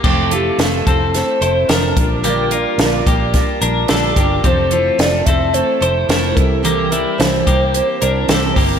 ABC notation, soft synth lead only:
X:1
M:4/4
L:1/8
Q:1/4=109
K:F
V:1 name="Soft synth lead"
z G A2 c2 B2 | B3 z4 z | c c d e c c2 A- | A B c4- c z |]